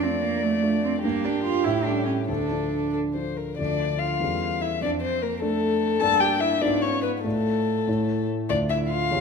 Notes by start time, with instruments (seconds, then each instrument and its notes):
Already playing: violin D5
0.03 grand piano A3 D4 F4, cello C4
0.23 cello A#3
0.42 cello A3
0.63 grand piano A3 D4 F4
0.83 cello C4
1.03 grand piano G2, cello A#3, violin G4
1.24 grand piano G3 D4 A#4, cello D4
1.44 cello F4
1.64 grand piano A2, cello E4
1.84 grand piano G3 C#4 A4, cello D4
2.05 cello C#4
2.28 grand piano D2, cello D4, violin A4
2.51 grand piano F3 D4 A4
2.93 violin A4
3.14 grand piano F3 D4 A4, violin C5
3.37 violin A#4
3.58 grand piano D2 F3 D4 A4, cello D4, violin D5
3.99 cello F4, violin F5
4.20 grand piano E2 G3 C#4 A4
4.61 cello E4, violin E5
4.81 grand piano F2, cello D4, violin D5
5.02 cello C4, violin C5
5.22 cello A#3, violin A#4
5.40 grand piano A3 D4 A4, cello A3, violin A4
6.00 grand piano G2 A#3 D4 D5, cello A4, violin A5
6.20 cello G4, violin G5
6.40 cello E4, violin E5
6.61 grand piano G#2 B3 F4 D5, cello D4, violin D5
6.82 cello C#4, violin C#5
7.03 cello B3, violin B4
7.24 grand piano A2 A3 F4 D5, cello A3, violin A4
7.87 grand piano A2 A3 E4 C#5
8.49 grand piano D2 A3 F4 D5, cello D4, violin D5
8.70 cello E4, violin E5
8.90 cello F4, violin F5
9.11 grand piano E2 A3 G4 C#5